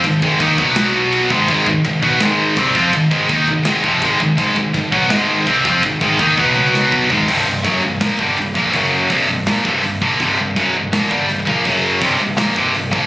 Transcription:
<<
  \new Staff \with { instrumentName = "Distorted electric guitar" } { \clef bass \time 4/4 \key c \minor \tempo 4 = 165 <aes, ees>8 <aes, ees aes>8 <ees bes ees'>8 <b, fis b>2 <aes, ees aes>8 | <aes, ees aes>8 <aes, ees>8 <aes, ees>8 <b, fis b>8 <aes, ees aes>4 <c g c'>8 <f c' f'>8 | <aes, ees>8 <aes, ees aes>8 <ees bes ees'>8 <aes, ees>8 <aes, ees aes>8 <f, c f>8 <aes, ees aes>8 <aes, ees>8 | <aes, ees aes>8 <aes, ees>8 <aes, ees>8 <b, fis b>8 <aes, ees aes>4 <c g c'>8 <f c' f'>8 |
<aes, ees>8 <aes, ees aes>8 <ees bes ees'>8 <b, fis b>2 <aes, ees aes>8 | <c, g, c>8 <c, g,>8 <fis, des fis>8 <c, g,>8 <bes, f bes>8 <g, d g>8 <c, g,>8 <bes, f bes>8 | <fis, cis fis>4 <c, g, c>8 <c, g,>8 <bes, f bes>8 <c, g, c>8 <c, g,>8 <bes, f bes>8 | <c, g, c>8 <c, g,>8 <fis, des fis>8 <c, g,>8 <bes, f bes>8 <g, d g>8 <c, g,>8 <bes, f bes>8 |
<fis, cis fis>4 <c, g, c>8 <c, g,>8 <bes, f bes>8 <c, g, c>8 <c, g,>8 <bes, f bes>8 | }
  \new Staff \with { instrumentName = "Picked electric bass" } { \clef bass \time 4/4 \key c \minor aes,,8 aes,,8 ees,8 b,,2 aes,,8 | aes,,8 aes,,8 aes,,8 b,,8 aes,,4 c,8 f,8 | aes,,8 aes,,8 ees,8 aes,,8 aes,,8 f,,8 aes,,8 aes,,8 | aes,,8 aes,,8 aes,,8 b,,8 aes,,4 c,8 f,8 |
aes,,8 aes,,8 ees,8 b,,2 aes,,8 | c,,8 c,,8 fis,,8 c,,8 bes,,8 g,,8 c,,8 bes,,8 | fis,,4 c,,8 c,,8 bes,,8 c,,8 c,,8 bes,,8 | c,,8 c,,8 fis,,8 c,,8 bes,,8 g,,8 c,,8 bes,,8 |
fis,,4 c,,8 c,,8 bes,,8 c,,8 c,,8 bes,,8 | }
  \new DrumStaff \with { instrumentName = "Drums" } \drummode { \time 4/4 <cymc bd>8 bd8 <cymc bd>8 bd8 <cymc sn>4 cymc8 bd8 | <cymc bd>8 bd8 <cymc bd>8 bd8 <cymc sn>4 <cymc bd>8 bd8 | <cymc bd>8 bd8 <cymc bd>8 bd8 <cymc sn>8 bd8 <cymc bd>8 bd8 | <cymc bd>8 bd8 <cymc bd>8 bd8 <cymc sn>4 <cymc bd>8 bd8 |
<cymc bd>8 bd8 <cymc bd>8 bd8 tommh8 sn8 bd8 tomfh8 | <cymc bd>4 <hho bd>4 <hho sn>8 bd8 hho8 bd8 | <hho bd>4 <hho bd>4 <hho sn>8 bd8 hho8 bd8 | <hho bd>4 <hho bd>4 <hho sn>8 bd8 hho8 bd8 |
<hho bd>4 <hho bd>4 <hho sn>8 bd8 hho8 bd8 | }
>>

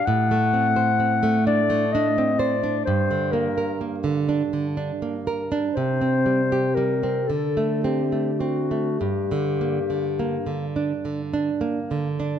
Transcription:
<<
  \new Staff \with { instrumentName = "Clarinet" } { \time 6/8 \key g \minor \tempo 4. = 40 fis''4. d''8 ees''8 d''8 | c''8 bes'8 r2 | c''4 bes'8 a'8 g'8 fis'8 | g'4. r4. | }
  \new Staff \with { instrumentName = "Nylon-string guitar" } { \time 6/8 \key g \minor a,16 a16 c'16 c''16 c'16 a16 d'16 a16 d'16 c'16 c''16 d'16 | g,16 d16 bes16 bes'16 bes16 d16 d'16 d16 d'16 bes16 bes'16 d'16 | c16 c'16 g16 g'16 g16 c'16 d16 a16 c'16 a16 c'16 a16 | g,16 d16 bes16 d16 bes16 d16 d'16 d16 d'16 bes16 d16 d'16 | }
>>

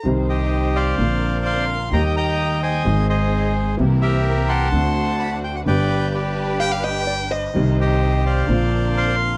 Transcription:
<<
  \new Staff \with { instrumentName = "Violin" } { \time 4/4 \key c \minor \tempo 4 = 128 r1 | r1 | r1 | r2 g''16 f''16 g''4 ees''8~ |
ees''16 r2. r8. | }
  \new Staff \with { instrumentName = "Bandoneon" } { \time 4/4 \key c \minor << { r8 ees''4 f''4. c'''4 | bes''8 bes''4 aes''4 ees''4 r8 | r8 e''4 c'''4. b''16 a''16 g''16 fis''16 | g''4 d''4 r2 |
r8 ees''4 f''4. c'''4 | } \\ { r8 g'4 <c'' d''>4. f''4 | <ees'' g''>8 <ees'' g''>4 <c'' ees''>4 <aes' c''>4. | r8 <g' bes'>4 <fis'' a''>2 r8 | <b' d''>4 <g' b'>2 r4 |
r8 g'4 <c'' d''>4. f''4 | } >> }
  \new Staff \with { instrumentName = "Hollow-body jazz guitar" } { \time 4/4 \key c \minor r1 | r1 | r1 | r2 f''8 ees''8 d''8 c''8~ |
c''16 r2. r8. | }
  \new Staff \with { instrumentName = "String section" } { \time 4/4 \key c \minor <ees' c''>2 <c' d' bes'>2 | <bes ees' g'>2 <c' ees' aes'>2 | <c' e' bes'>2 <d' fis' c''>2 | <d' g' b'>1 |
<ees' c''>2 <c' d' bes'>2 | }
  \new Staff \with { instrumentName = "Grand piano" } { \clef bass \time 4/4 \key c \minor <c, c ees g c' ees'>2 <bes,, bes, d bes c' f'>2 | <ees, ees g bes g'>2 <aes,, aes, ees aes c' aes'>2 | <c, c e bes c' g'>2 <d, d a c' fis'>2 | <g,, g, d g b g'>1 |
<c, c ees g c' ees'>2 <bes,, bes, d bes c' f'>2 | }
  \new Staff \with { instrumentName = "Upright bass" } { \clef bass \time 4/4 \key c \minor c,2 bes,,2 | ees,2 aes,,2 | c,2 d,2 | g,,1 |
c,2 bes,,2 | }
>>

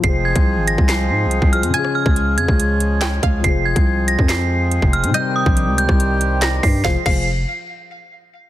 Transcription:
<<
  \new Staff \with { instrumentName = "Synth bell" } { \time 4/4 \key f \minor \tempo 4 = 141 c''''8 aes'''4 bes'''8 c''''4. f'''8 | aes'''8 f'''4 aes'''2~ aes'''8 | c''''8 aes'''4 bes'''8 c''''4. f'''8 | g'''8 ees'''4 g'''4. bes'''8 c''''8 |
c''''8 c''''8 r2. | }
  \new Staff \with { instrumentName = "Synth pluck" } { \time 4/4 \key f \minor r1 | aes''2 r4 g''8 f''8 | r1 | ees''2 r2 |
f''8 f''8 r2. | }
  \new Staff \with { instrumentName = "Grand piano" } { \time 4/4 \key f \minor <f f' aes' c''>2.~ <f f' aes' c''>8 <f f' aes' c''>8 | <des des' f' aes'>1 | <f f' aes' c''>1 | <c g ees' c''>1 |
<f f' aes' c''>8 <f f' aes' c''>8 r2. | }
  \new Staff \with { instrumentName = "Harmonium" } { \time 4/4 \key f \minor c'1 | des'1 | c'1~ | c'1 |
r1 | }
  \new Staff \with { instrumentName = "Harmonium" } { \clef bass \time 4/4 \key f \minor <f aes aes'>1~ | <f aes aes'>1~ | <f aes aes'>1 | <ees g g'>1 |
<f aes c' aes'>8 r2. r8 | }
  \new Staff \with { instrumentName = "808-style bass" } { \clef bass \time 4/4 \key f \minor f,,8. c,8 aes,,8 c,8. aes,16. c,16. c,8 f,16 | r8. des,8. f,16 des,4.~ des,16 des,8 | f,,8. c,4 f,4. f,,8 aes,16 | r8. bes,,8 des,8 c,4.~ c,16 g,8 |
f,,16 r16 f,,4 r2 r8 | }
  \new DrumStaff \with { instrumentName = "Drums" } \drummode { \time 4/4 <hh bd>8. <hh bd>16 r8 hh16 bd16 <hc hh sn>4 hh16 bd16 hh16 hh16 | hh16 ss8 bd16 hh8 hh16 bd16 hh8 hh8 <hc hh sn>8 <hh bd>8 | <hh bd>8. <hh bd>16 r8 hh16 bd16 <hc hh sn>4 hh16 bd16 hh16 hh16 | hh8. bd16 hh8 hh16 <bd ss>16 hh8 hh8 <hc hh sn>8 <hho bd>8 |
<bd sn>8 <cymc bd>8 r4 r4 r4 | }
>>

